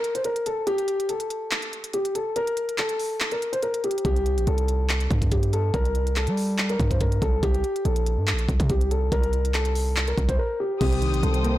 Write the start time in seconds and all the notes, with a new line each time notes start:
Already playing: A#4
0.04 closed hi-hat
0.15 C5, closed hi-hat
0.24 A#4, closed hi-hat
0.36 closed hi-hat
0.46 A4, closed hi-hat
0.67 G4, closed hi-hat
0.78 closed hi-hat
0.88 closed hi-hat
1.00 closed hi-hat
1.09 A4, closed hi-hat
1.20 closed hi-hat
1.30 closed hi-hat
1.51 clap, closed hi-hat
1.62 closed hi-hat
1.73 closed hi-hat
1.84 closed hi-hat
1.93 G4, closed hi-hat
2.05 closed hi-hat
2.15 A4, closed hi-hat
2.36 A#4, closed hi-hat
2.47 closed hi-hat
2.57 closed hi-hat
2.69 closed hi-hat
2.78 A4, clap, closed hi-hat
2.89 closed hi-hat
2.99 open hi-hat
3.20 clap, closed hi-hat
3.31 A#4, closed hi-hat
3.42 closed hi-hat
3.53 C5, closed hi-hat
3.62 A#4, closed hi-hat
3.74 closed hi-hat
3.84 G4, closed hi-hat
3.91 closed hi-hat
3.98 closed hi-hat
4.05 C2 G4, kick, closed hi-hat
4.16 closed hi-hat
4.26 closed hi-hat
4.37 A#1, closed hi-hat
4.47 C2 A4, closed hi-hat
4.58 closed hi-hat
4.68 closed hi-hat
4.89 clap, closed hi-hat
5.00 closed hi-hat
5.11 G2, kick, closed hi-hat
5.22 kick, closed hi-hat
5.31 G4, kick, closed hi-hat
5.43 closed hi-hat
5.53 A4, closed hi-hat
5.74 C2 A#4, kick, closed hi-hat
5.85 closed hi-hat
5.95 closed hi-hat
6.07 closed hi-hat
6.16 A4, clap, closed hi-hat
6.27 G3, closed hi-hat
6.37 open hi-hat
6.58 clap, closed hi-hat
6.69 A#4, closed hi-hat
6.80 G2, kick, closed hi-hat
6.91 C5, kick, closed hi-hat
7.00 A#4, kick, closed hi-hat
7.12 closed hi-hat
7.22 C2 A4, kick, closed hi-hat
7.43 C2 G4, kick, closed hi-hat
7.54 closed hi-hat
7.64 closed hi-hat
7.76 closed hi-hat
7.85 A#1 A4, closed hi-hat
7.96 closed hi-hat
8.06 closed hi-hat
8.18 G2
8.27 clap, closed hi-hat
8.33 A#1
8.38 closed hi-hat
8.49 C2, kick, closed hi-hat
8.60 C3, kick, closed hi-hat
8.70 C2 G4, kick, closed hi-hat
8.81 closed hi-hat
8.91 A4, closed hi-hat
9.12 C2 A#4, kick, closed hi-hat
9.23 closed hi-hat
9.33 closed hi-hat
9.45 closed hi-hat
9.54 A4, clap, closed hi-hat
9.65 closed hi-hat
9.75 open hi-hat
9.96 clap, closed hi-hat
10.07 A#4, closed hi-hat
10.18 C2, kick, closed hi-hat
10.28 C2 C5, kick, closed hi-hat
10.39 A#4
10.60 G4
10.81 C2 C3 G4 C5 G5 D#6, kick, closed hi-hat, crash
10.92 closed hi-hat
11.02 D#3, closed hi-hat
11.13 A#1, closed hi-hat
11.23 C2 G3 A4, closed hi-hat
11.34 closed hi-hat
11.44 A#3, closed hi-hat